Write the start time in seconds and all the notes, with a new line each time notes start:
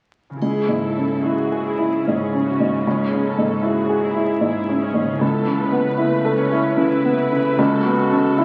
0.30 C#3 C#4
0.36 E4 G#4
0.41 C#2 C#3 E4 G#4, triangle
0.69 G#2
0.83 A4
0.97 C#4
1.23 E4 F#4 G#4
1.52 G#4
1.65 E4
1.79 E4
2.05 G#2 C#4 G#4
2.33 C#4
2.47 F#4
2.60 G#2
2.85 C#2 G#4
3.13 C#4
3.25 A4
3.38 G#2
3.62 E4 F#4 G#4
3.89 G#4
4.03 E4
4.16 E4
4.41 G#2 E4 G#4
4.69 C#4
4.82 C#4
4.94 G#2
5.03 C#3
5.07 B3
5.12 E4
5.17 C#2 B3 A4
5.21 C#3 A4
5.47 C#3
5.61 B4
5.72 B3
5.98 A3 E4
6.25 A4
6.38 C#4
6.52 E4
6.77 C#3 E4 B4
7.05 B3
7.32 C#3
7.58 C#2 F#4 A4
7.86 B3
8.00 A4
8.12 C#3
8.38 E4